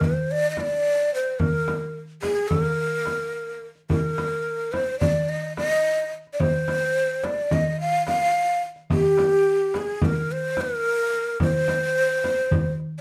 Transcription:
0.01 0.33 C5 medium
0.01 darbuka dum medium
0.01 frame drum medium
0.30 0.49 D5 medium
0.30 darbuka ka soft
0.50 0.62 D#5 medium
0.57 1.14 D5 loud
0.57 darbuka tek medium
0.57 frame drum medium
0.72 darbuka ka soft
1.13 1.41 C5 medium
1.13 darbuka ka soft
1.26 darbuka ka soft
1.39 1.95 A#4 medium
1.39 frame drum medium
1.39 darbuka dum medium
1.68 darbuka tek medium
1.68 frame drum medium
2.22 2.50 G#4 medium
2.22 darbuka tek medium
2.22 frame drum medium
2.48 2.61 A4 medium
2.48 frame drum medium
2.48 darbuka dum medium
2.61 3.61 A#4 medium
3.06 darbuka tek medium
3.06 frame drum medium
3.62 darbuka ka soft
3.75 darbuka ka soft
3.90 4.74 A#4 medium
3.90 darbuka dum medium
3.90 frame drum medium
4.18 darbuka tek medium
4.18 frame drum medium
4.72 4.99 C5 medium
4.72 darbuka tek medium
4.72 frame drum medium
5.00 5.30 D5 medium
5.00 frame drum medium
5.00 darbuka dum medium
5.29 5.57 D#5 medium
5.29 darbuka ka soft
5.57 6.09 D#5 medium
5.57 darbuka tek medium
5.57 frame drum medium
5.72 darbuka ka soft
6.13 darbuka ka soft
6.27 darbuka ka soft
6.33 6.42 D5 medium
6.40 7.25 C5 medium
6.40 darbuka dum medium
6.40 frame drum medium
6.68 darbuka tek medium
6.68 frame drum medium
7.23 7.54 D5 medium
7.23 darbuka tek medium
7.23 frame drum medium
7.51 7.80 D#5 medium
7.51 darbuka dum medium
7.51 frame drum medium
7.79 8.06 F5 medium
7.79 darbuka ka soft
8.07 8.58 F5 medium
8.07 darbuka tek medium
8.07 frame drum medium
8.21 darbuka ka soft
8.63 darbuka ka soft
8.76 darbuka ka soft
8.90 9.78 G4 medium
8.90 darbuka dum medium
8.90 frame drum medium
9.17 darbuka tek medium
9.17 frame drum medium
9.74 10.07 G#4 medium
9.74 darbuka tek medium
9.74 frame drum medium
10.02 10.33 A#4 medium
10.02 frame drum medium
10.02 darbuka dum medium
10.32 10.63 C5 medium
10.57 darbuka tek medium
10.57 frame drum medium
10.61 11.41 A#4 loud
10.71 darbuka ka soft
11.13 darbuka ka soft
11.27 darbuka ka soft
11.40 12.69 C5 loud
11.40 frame drum medium
11.40 darbuka dum medium
11.68 darbuka tek medium
11.68 frame drum medium
12.24 darbuka tek medium
12.24 frame drum medium
12.51 darbuka dum medium
12.51 frame drum medium
12.79 darbuka ka soft

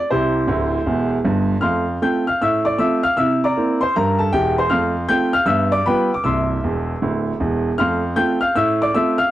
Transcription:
0.10 0.43 C2 medium
0.10 0.44 C3 medium
0.10 1.22 E4 medium
0.10 1.22 G4 soft
0.10 1.08 C5 medium
0.47 0.77 D1 medium
0.47 0.77 D2 medium
0.86 1.15 E1 medium
0.86 1.16 E2 medium
1.25 1.54 G1 medium
1.25 1.54 G2 medium
1.61 1.95 F2 soft
1.61 1.85 A3 soft
1.61 1.99 F5 soft
1.61 1.99 C6 medium
1.61 1.95 F6 medium
2.02 2.23 A3 soft
2.02 2.23 C4 soft
2.02 2.24 F4 soft
2.02 2.26 G5 soft
2.02 2.23 G6 medium
2.27 2.41 F5 soft
2.27 2.39 F6 medium
2.42 2.74 A2 medium
2.42 2.65 E5 medium
2.42 2.62 E6 medium
2.65 2.79 D5 medium
2.65 2.77 D6 medium
2.79 3.00 A3 soft
2.79 3.00 C4 soft
2.79 3.01 F4 soft
2.79 3.02 E5 medium
2.79 3.00 E6 medium
3.03 3.16 F5 medium
3.03 3.15 F6 medium
3.17 3.50 C3 medium
3.17 3.40 E4 soft
3.17 3.41 E5 medium
3.17 3.38 E6 medium
3.44 3.80 D5 soft
3.44 3.79 A#5 medium
3.44 3.76 D6 medium
3.56 3.77 A#3 soft
3.56 3.78 C4 soft
3.56 3.79 E4 soft
3.81 3.95 C5 soft
3.81 3.93 C6 medium
3.96 4.29 G2 medium
3.96 4.19 A#4 medium
3.96 4.16 A#5 medium
4.19 4.33 A4 soft
4.19 4.31 A5 medium
4.33 4.64 E1 medium
4.33 4.64 E2 medium
4.33 4.57 G4 medium
4.33 4.54 G5 medium
4.58 4.71 C5 medium
4.58 4.69 C6 medium
4.70 5.04 F2 medium
4.70 4.93 A3 soft
4.70 5.07 F5 medium
4.70 5.07 C6 medium
4.70 5.03 F6 medium
5.09 5.31 A3 soft
5.09 5.31 C4 soft
5.09 5.31 F4 soft
5.09 5.33 G5 medium
5.09 5.30 G6 medium
5.33 5.48 F5 medium
5.33 5.46 F6 medium
5.46 5.80 G2 medium
5.46 5.70 B3 soft
5.46 5.71 E5 medium
5.46 5.68 E6 medium
5.72 5.85 D5 medium
5.72 5.84 D6 medium
5.86 6.08 G3 soft
5.86 6.08 B3 soft
5.86 6.09 F4 soft
5.86 6.11 B4 soft
5.86 6.11 G5 medium
5.86 6.08 B5 medium
6.14 6.25 D6 medium
6.24 6.55 C1 soft
6.24 6.56 C2 soft
6.24 7.37 E5 soft
6.24 7.37 C6 soft
6.24 7.23 E6 medium
6.64 6.93 E1 soft
6.64 6.93 E2 soft
7.02 7.31 D1 soft
7.02 7.31 D2 medium
7.40 7.69 E1 medium
7.40 7.69 E2 medium
7.78 8.12 F2 medium
7.78 8.01 A3 soft
7.78 8.15 F5 medium
7.78 8.15 C6 soft
7.78 8.11 F6 medium
8.16 8.38 A3 soft
8.16 8.38 C4 soft
8.16 8.38 F4 soft
8.16 8.40 G5 soft
8.16 8.38 G6 medium
8.41 8.55 F5 medium
8.41 8.53 F6 medium
8.56 8.89 A2 medium
8.56 8.79 E5 medium
8.56 8.77 E6 medium
8.82 8.95 D5 medium
8.82 8.93 D6 medium
8.94 9.16 A3 soft
8.94 9.16 C4 soft
8.94 9.17 F4 soft
8.94 9.18 E5 medium
8.94 9.15 E6 medium
9.18 9.31 F5 medium
9.18 9.30 F6 medium

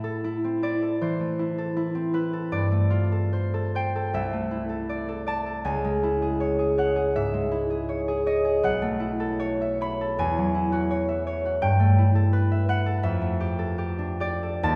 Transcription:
0.00 2.55 A2 medium
0.00 1.19 A3 medium
0.00 0.23 E4 medium
0.00 0.81 A4 medium
0.00 2.55 E5 medium
0.24 0.62 E4 medium
0.44 1.94 C4 medium
0.63 1.38 E4 medium
0.63 1.28 D5 medium
0.82 1.57 A4 soft
1.01 2.55 E3 medium
1.01 3.32 C5 medium
1.20 2.70 A3 medium
1.39 1.75 E4 medium
1.58 2.32 A4 medium
1.76 2.12 E4 medium
1.95 5.67 C4 medium
2.13 2.55 E4 medium
2.13 2.55 B4 medium
2.33 3.11 A4 medium
2.52 4.18 G2 medium
2.52 4.88 D5 medium
2.72 4.32 A3 medium
2.90 4.17 F4 medium
3.12 3.53 A4 medium
3.33 3.74 C5 medium
3.54 3.94 A4 medium
3.75 5.67 C5 medium
3.75 5.68 G5 medium
3.96 4.68 A4 medium
4.14 5.67 C2 medium
4.14 7.14 E5 medium
4.33 5.67 A3 medium
4.51 6.02 E4 medium
4.69 5.07 A4 medium
4.89 5.26 D5 medium
5.09 5.45 A4 medium
5.27 5.68 D5 medium
5.27 5.68 A5 medium
5.46 5.68 A4 soft
5.65 8.66 C#2 medium
5.65 8.66 G#5 medium
5.84 7.32 G#3 medium
6.03 7.50 E4 medium
6.22 6.58 G#4 medium
6.40 6.77 C#5 medium
6.59 6.95 G#4 medium
6.78 7.88 C#5 medium
6.78 7.41 F#5 medium
6.96 7.69 G#4 soft
7.16 8.66 G#2 soft
7.16 9.60 E5 medium
7.33 8.66 G#3 soft
7.51 8.99 E4 medium
7.70 8.07 G#4 medium
7.89 8.26 C#5 medium
8.08 8.44 G#4 medium
8.26 9.38 C#5 medium
8.26 8.66 D#5 medium
8.45 8.66 G#4 medium
8.63 10.22 B1 medium
8.63 11.65 F#5 medium
8.82 10.22 A3 medium
9.00 10.53 E4 medium
9.20 10.00 A4 medium
9.40 9.80 C#5 medium
9.61 11.07 E5 medium
9.81 10.89 C#5 medium
9.81 13.06 B5 medium
10.01 10.22 A4 medium
10.18 11.64 E2 medium
10.18 11.64 G#5 medium
10.38 11.65 F#3 medium
10.55 11.97 E4 medium
10.72 11.44 F#4 medium
10.91 11.26 C#5 medium
11.09 12.50 E5 medium
11.27 11.65 C#5 medium
11.45 11.65 F#4 medium
11.62 13.06 G2 medium
11.62 14.76 G5 medium
11.80 13.20 A3 medium
11.98 13.06 E4 medium
12.15 12.85 A4 medium
12.33 12.68 B4 medium
12.52 13.02 E5 medium
12.69 13.06 B4 medium
12.69 13.29 F#5 medium
12.86 13.58 A4 medium
13.03 14.67 F2 medium
13.03 14.76 E5 medium
13.22 14.67 A3 medium
13.40 13.77 G4 medium
13.59 14.42 A4 medium
13.78 14.19 G4 medium
13.99 14.66 D4 medium
14.20 14.76 G4 medium
14.20 14.67 D5 medium
14.43 14.67 A4 medium
14.63 14.76 D#2 medium
14.63 14.76 A5 loud

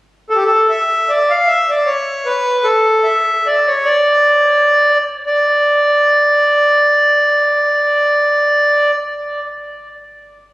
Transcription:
0.30 0.38 A4 medium
0.36 0.44 G4 medium
0.45 0.71 A4 medium
0.69 1.11 E5 medium
1.09 1.32 D5 medium
1.30 1.50 F5 medium
1.47 1.70 E5 medium
1.70 1.89 D5 medium
1.86 2.28 C#5 medium
2.26 2.68 B4 medium
2.64 3.07 A4 medium
3.04 3.47 E5 medium
3.46 3.70 D5 medium
3.68 3.89 C#5 medium
3.86 4.98 D5 loud
5.27 8.91 D5 medium

